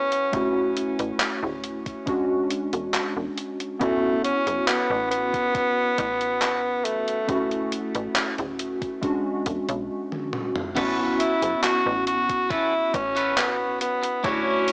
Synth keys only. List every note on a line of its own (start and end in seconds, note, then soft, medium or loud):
0.00 0.24 B3 medium
0.00 0.25 C#4 medium
0.00 0.25 E4 medium
0.00 0.26 F#4 loud
0.32 1.98 A3 medium
0.32 1.98 C#4 medium
0.32 1.99 E4 medium
0.32 1.99 F#4 medium
2.05 3.72 G#3 medium
2.05 3.72 C#4 medium
2.05 3.73 D4 medium
2.05 3.73 F#4 medium
3.79 7.20 B3 medium
3.79 7.20 C#4 medium
3.79 7.21 E4 medium
3.79 7.21 F#4 loud
7.27 8.94 A3 medium
7.27 8.94 C#4 medium
7.27 8.95 E4 medium
7.27 8.95 F#4 medium
9.01 10.67 G#3 medium
9.01 10.68 C#4 medium
9.01 10.68 D4 medium
9.01 10.69 F#4 medium
10.75 14.15 B3 medium
10.75 14.16 C#4 medium
10.75 14.16 E4 medium
10.75 14.17 F#4 loud
14.23 14.72 A3 medium
14.23 14.72 E4 medium
14.23 14.72 F#4 medium
14.23 14.72 C#5 medium